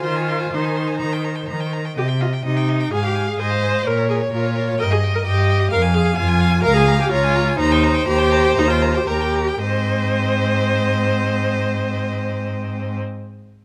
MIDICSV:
0, 0, Header, 1, 5, 480
1, 0, Start_track
1, 0, Key_signature, -4, "major"
1, 0, Tempo, 479616
1, 49, Time_signature, 4, 2, 24, 8
1, 2448, Tempo, 465477
1, 6768, Tempo, 481155
1, 8208, Tempo, 510638
1, 13443, End_track
2, 0, Start_track
2, 0, Title_t, "Violin"
2, 0, Program_c, 0, 40
2, 51, Note_on_c, 0, 84, 43
2, 157, Note_on_c, 0, 80, 41
2, 172, Note_off_c, 0, 84, 0
2, 284, Note_on_c, 0, 84, 39
2, 299, Note_off_c, 0, 80, 0
2, 397, Note_on_c, 0, 80, 42
2, 412, Note_off_c, 0, 84, 0
2, 521, Note_off_c, 0, 80, 0
2, 527, Note_on_c, 0, 84, 46
2, 650, Note_on_c, 0, 80, 41
2, 665, Note_off_c, 0, 84, 0
2, 765, Note_on_c, 0, 84, 45
2, 780, Note_off_c, 0, 80, 0
2, 877, Note_on_c, 0, 80, 39
2, 892, Note_off_c, 0, 84, 0
2, 990, Note_off_c, 0, 80, 0
2, 996, Note_on_c, 0, 82, 45
2, 1130, Note_on_c, 0, 79, 39
2, 1145, Note_off_c, 0, 82, 0
2, 1242, Note_on_c, 0, 82, 39
2, 1257, Note_off_c, 0, 79, 0
2, 1357, Note_on_c, 0, 79, 34
2, 1372, Note_off_c, 0, 82, 0
2, 1477, Note_off_c, 0, 79, 0
2, 1483, Note_on_c, 0, 82, 38
2, 1605, Note_on_c, 0, 79, 41
2, 1620, Note_off_c, 0, 82, 0
2, 1729, Note_on_c, 0, 82, 37
2, 1744, Note_off_c, 0, 79, 0
2, 1854, Note_on_c, 0, 79, 40
2, 1869, Note_off_c, 0, 82, 0
2, 1959, Note_off_c, 0, 79, 0
2, 1965, Note_on_c, 0, 75, 48
2, 2082, Note_on_c, 0, 79, 45
2, 2097, Note_off_c, 0, 75, 0
2, 2212, Note_on_c, 0, 75, 43
2, 2227, Note_off_c, 0, 79, 0
2, 2334, Note_on_c, 0, 79, 44
2, 2349, Note_off_c, 0, 75, 0
2, 2444, Note_off_c, 0, 79, 0
2, 2450, Note_on_c, 0, 75, 50
2, 2572, Note_on_c, 0, 79, 44
2, 2588, Note_off_c, 0, 75, 0
2, 2699, Note_on_c, 0, 75, 45
2, 2715, Note_off_c, 0, 79, 0
2, 2818, Note_on_c, 0, 79, 44
2, 2834, Note_off_c, 0, 75, 0
2, 2937, Note_off_c, 0, 79, 0
2, 2943, Note_on_c, 0, 80, 50
2, 3054, Note_on_c, 0, 77, 45
2, 3069, Note_off_c, 0, 80, 0
2, 3173, Note_on_c, 0, 80, 44
2, 3189, Note_off_c, 0, 77, 0
2, 3291, Note_on_c, 0, 77, 38
2, 3306, Note_off_c, 0, 80, 0
2, 3413, Note_off_c, 0, 77, 0
2, 3419, Note_on_c, 0, 80, 42
2, 3539, Note_on_c, 0, 77, 42
2, 3555, Note_off_c, 0, 80, 0
2, 3665, Note_on_c, 0, 80, 42
2, 3681, Note_off_c, 0, 77, 0
2, 3785, Note_on_c, 0, 77, 46
2, 3800, Note_off_c, 0, 80, 0
2, 3895, Note_off_c, 0, 77, 0
2, 3901, Note_on_c, 0, 70, 48
2, 4027, Note_on_c, 0, 73, 43
2, 4043, Note_off_c, 0, 70, 0
2, 4139, Note_on_c, 0, 70, 46
2, 4154, Note_off_c, 0, 73, 0
2, 4274, Note_on_c, 0, 73, 46
2, 4290, Note_off_c, 0, 70, 0
2, 4380, Note_off_c, 0, 73, 0
2, 4386, Note_on_c, 0, 70, 53
2, 4523, Note_on_c, 0, 73, 45
2, 4539, Note_off_c, 0, 70, 0
2, 4628, Note_on_c, 0, 70, 52
2, 4644, Note_off_c, 0, 73, 0
2, 4748, Note_on_c, 0, 73, 51
2, 4764, Note_off_c, 0, 70, 0
2, 4865, Note_off_c, 0, 73, 0
2, 4874, Note_on_c, 0, 79, 57
2, 4989, Note_on_c, 0, 75, 46
2, 5004, Note_off_c, 0, 79, 0
2, 5117, Note_on_c, 0, 79, 50
2, 5133, Note_off_c, 0, 75, 0
2, 5230, Note_on_c, 0, 75, 48
2, 5245, Note_off_c, 0, 79, 0
2, 5344, Note_off_c, 0, 75, 0
2, 5354, Note_on_c, 0, 79, 52
2, 5478, Note_on_c, 0, 75, 50
2, 5493, Note_off_c, 0, 79, 0
2, 5598, Note_on_c, 0, 79, 48
2, 5614, Note_off_c, 0, 75, 0
2, 5697, Note_on_c, 0, 75, 55
2, 5712, Note_off_c, 0, 79, 0
2, 5807, Note_off_c, 0, 75, 0
2, 5813, Note_on_c, 0, 77, 57
2, 5923, Note_on_c, 0, 80, 58
2, 5939, Note_off_c, 0, 77, 0
2, 6054, Note_on_c, 0, 77, 57
2, 6069, Note_off_c, 0, 80, 0
2, 6168, Note_on_c, 0, 80, 56
2, 6183, Note_off_c, 0, 77, 0
2, 6283, Note_off_c, 0, 80, 0
2, 6289, Note_on_c, 0, 77, 66
2, 6402, Note_on_c, 0, 80, 55
2, 6417, Note_off_c, 0, 77, 0
2, 6535, Note_on_c, 0, 77, 60
2, 6550, Note_off_c, 0, 80, 0
2, 6644, Note_on_c, 0, 80, 61
2, 6659, Note_off_c, 0, 77, 0
2, 6765, Note_off_c, 0, 80, 0
2, 6771, Note_on_c, 0, 82, 68
2, 6905, Note_on_c, 0, 80, 59
2, 6920, Note_off_c, 0, 82, 0
2, 7013, Note_on_c, 0, 82, 60
2, 7028, Note_off_c, 0, 80, 0
2, 7134, Note_on_c, 0, 80, 56
2, 7149, Note_off_c, 0, 82, 0
2, 7247, Note_off_c, 0, 80, 0
2, 7252, Note_on_c, 0, 82, 61
2, 7368, Note_on_c, 0, 80, 63
2, 7383, Note_off_c, 0, 82, 0
2, 7488, Note_on_c, 0, 82, 57
2, 7503, Note_off_c, 0, 80, 0
2, 7612, Note_on_c, 0, 80, 66
2, 7627, Note_off_c, 0, 82, 0
2, 7721, Note_off_c, 0, 80, 0
2, 7727, Note_on_c, 0, 82, 69
2, 7849, Note_on_c, 0, 79, 62
2, 7864, Note_off_c, 0, 82, 0
2, 7960, Note_on_c, 0, 82, 62
2, 7975, Note_off_c, 0, 79, 0
2, 8075, Note_on_c, 0, 79, 68
2, 8090, Note_off_c, 0, 82, 0
2, 8199, Note_off_c, 0, 79, 0
2, 8205, Note_on_c, 0, 82, 62
2, 8309, Note_on_c, 0, 79, 61
2, 8323, Note_off_c, 0, 82, 0
2, 8433, Note_on_c, 0, 82, 66
2, 8448, Note_off_c, 0, 79, 0
2, 8547, Note_on_c, 0, 79, 58
2, 8561, Note_off_c, 0, 82, 0
2, 8656, Note_off_c, 0, 79, 0
2, 8662, Note_on_c, 0, 82, 63
2, 8792, Note_on_c, 0, 79, 60
2, 8806, Note_off_c, 0, 82, 0
2, 8907, Note_on_c, 0, 82, 54
2, 8921, Note_off_c, 0, 79, 0
2, 9024, Note_on_c, 0, 79, 53
2, 9038, Note_off_c, 0, 82, 0
2, 9146, Note_off_c, 0, 79, 0
2, 9152, Note_on_c, 0, 82, 52
2, 9275, Note_on_c, 0, 79, 47
2, 9290, Note_off_c, 0, 82, 0
2, 9409, Note_on_c, 0, 82, 49
2, 9423, Note_off_c, 0, 79, 0
2, 9526, Note_on_c, 0, 79, 55
2, 9540, Note_off_c, 0, 82, 0
2, 9643, Note_off_c, 0, 79, 0
2, 9656, Note_on_c, 0, 75, 65
2, 12823, Note_off_c, 0, 75, 0
2, 13443, End_track
3, 0, Start_track
3, 0, Title_t, "Violin"
3, 0, Program_c, 1, 40
3, 28, Note_on_c, 1, 72, 49
3, 1691, Note_off_c, 1, 72, 0
3, 2946, Note_on_c, 1, 77, 57
3, 3393, Note_off_c, 1, 77, 0
3, 3427, Note_on_c, 1, 75, 59
3, 3899, Note_on_c, 1, 73, 56
3, 3914, Note_off_c, 1, 75, 0
3, 4861, Note_on_c, 1, 75, 62
3, 4876, Note_off_c, 1, 73, 0
3, 5319, Note_off_c, 1, 75, 0
3, 5326, Note_on_c, 1, 75, 67
3, 5796, Note_off_c, 1, 75, 0
3, 5803, Note_on_c, 1, 77, 64
3, 6271, Note_on_c, 1, 80, 73
3, 6287, Note_off_c, 1, 77, 0
3, 6751, Note_off_c, 1, 80, 0
3, 6758, Note_on_c, 1, 77, 74
3, 7230, Note_off_c, 1, 77, 0
3, 7242, Note_on_c, 1, 73, 76
3, 7713, Note_off_c, 1, 73, 0
3, 7718, Note_on_c, 1, 72, 83
3, 9143, Note_on_c, 1, 70, 65
3, 9157, Note_off_c, 1, 72, 0
3, 9392, Note_off_c, 1, 70, 0
3, 9646, Note_on_c, 1, 60, 54
3, 12813, Note_off_c, 1, 60, 0
3, 13443, End_track
4, 0, Start_track
4, 0, Title_t, "Viola"
4, 0, Program_c, 2, 41
4, 39, Note_on_c, 2, 65, 78
4, 537, Note_on_c, 2, 63, 62
4, 552, Note_off_c, 2, 65, 0
4, 1498, Note_off_c, 2, 63, 0
4, 1975, Note_on_c, 2, 67, 76
4, 2055, Note_off_c, 2, 67, 0
4, 2209, Note_on_c, 2, 65, 60
4, 2289, Note_off_c, 2, 65, 0
4, 2447, Note_on_c, 2, 63, 76
4, 2927, Note_on_c, 2, 68, 90
4, 2943, Note_off_c, 2, 63, 0
4, 3052, Note_off_c, 2, 68, 0
4, 3073, Note_on_c, 2, 67, 67
4, 3304, Note_off_c, 2, 67, 0
4, 3313, Note_on_c, 2, 68, 75
4, 3427, Note_on_c, 2, 72, 91
4, 3443, Note_off_c, 2, 68, 0
4, 3913, Note_on_c, 2, 70, 86
4, 3928, Note_off_c, 2, 72, 0
4, 4144, Note_off_c, 2, 70, 0
4, 4150, Note_on_c, 2, 68, 72
4, 4232, Note_off_c, 2, 68, 0
4, 4405, Note_on_c, 2, 65, 81
4, 4863, Note_off_c, 2, 65, 0
4, 4868, Note_on_c, 2, 70, 96
4, 4915, Note_off_c, 2, 70, 0
4, 4991, Note_on_c, 2, 68, 72
4, 5073, Note_off_c, 2, 68, 0
4, 5238, Note_on_c, 2, 70, 75
4, 5282, Note_off_c, 2, 70, 0
4, 5342, Note_on_c, 2, 67, 86
4, 5805, Note_off_c, 2, 67, 0
4, 5824, Note_on_c, 2, 70, 99
4, 5907, Note_off_c, 2, 70, 0
4, 6051, Note_on_c, 2, 68, 78
4, 6272, Note_off_c, 2, 68, 0
4, 6278, Note_on_c, 2, 65, 88
4, 6755, Note_off_c, 2, 65, 0
4, 6764, Note_on_c, 2, 70, 120
4, 6883, Note_off_c, 2, 70, 0
4, 6894, Note_on_c, 2, 68, 97
4, 7124, Note_off_c, 2, 68, 0
4, 7136, Note_on_c, 2, 67, 90
4, 7239, Note_off_c, 2, 67, 0
4, 7245, Note_on_c, 2, 65, 107
4, 7715, Note_off_c, 2, 65, 0
4, 7721, Note_on_c, 2, 63, 102
4, 8198, Note_off_c, 2, 63, 0
4, 8214, Note_on_c, 2, 67, 104
4, 8681, Note_on_c, 2, 63, 103
4, 8695, Note_off_c, 2, 67, 0
4, 8789, Note_off_c, 2, 63, 0
4, 8795, Note_on_c, 2, 65, 83
4, 9041, Note_on_c, 2, 67, 74
4, 9055, Note_off_c, 2, 65, 0
4, 9148, Note_off_c, 2, 67, 0
4, 9154, Note_on_c, 2, 67, 83
4, 9633, Note_off_c, 2, 67, 0
4, 9647, Note_on_c, 2, 72, 80
4, 12814, Note_off_c, 2, 72, 0
4, 13443, End_track
5, 0, Start_track
5, 0, Title_t, "Cello"
5, 0, Program_c, 3, 42
5, 41, Note_on_c, 3, 51, 59
5, 470, Note_off_c, 3, 51, 0
5, 530, Note_on_c, 3, 51, 53
5, 956, Note_off_c, 3, 51, 0
5, 1019, Note_on_c, 3, 51, 53
5, 1440, Note_off_c, 3, 51, 0
5, 1504, Note_on_c, 3, 51, 52
5, 1923, Note_off_c, 3, 51, 0
5, 1979, Note_on_c, 3, 48, 62
5, 2395, Note_off_c, 3, 48, 0
5, 2453, Note_on_c, 3, 48, 60
5, 2880, Note_off_c, 3, 48, 0
5, 2938, Note_on_c, 3, 44, 59
5, 3365, Note_off_c, 3, 44, 0
5, 3422, Note_on_c, 3, 44, 61
5, 3849, Note_off_c, 3, 44, 0
5, 3908, Note_on_c, 3, 46, 61
5, 4332, Note_off_c, 3, 46, 0
5, 4389, Note_on_c, 3, 46, 60
5, 4808, Note_off_c, 3, 46, 0
5, 4869, Note_on_c, 3, 43, 62
5, 5286, Note_off_c, 3, 43, 0
5, 5348, Note_on_c, 3, 43, 64
5, 5762, Note_off_c, 3, 43, 0
5, 5822, Note_on_c, 3, 41, 77
5, 6236, Note_off_c, 3, 41, 0
5, 6292, Note_on_c, 3, 41, 75
5, 6714, Note_off_c, 3, 41, 0
5, 6774, Note_on_c, 3, 37, 86
5, 7191, Note_off_c, 3, 37, 0
5, 7245, Note_on_c, 3, 37, 70
5, 7668, Note_off_c, 3, 37, 0
5, 7727, Note_on_c, 3, 39, 86
5, 8153, Note_off_c, 3, 39, 0
5, 8213, Note_on_c, 3, 39, 79
5, 8619, Note_off_c, 3, 39, 0
5, 8678, Note_on_c, 3, 39, 82
5, 9095, Note_off_c, 3, 39, 0
5, 9152, Note_on_c, 3, 39, 61
5, 9585, Note_off_c, 3, 39, 0
5, 9637, Note_on_c, 3, 44, 72
5, 12804, Note_off_c, 3, 44, 0
5, 13443, End_track
0, 0, End_of_file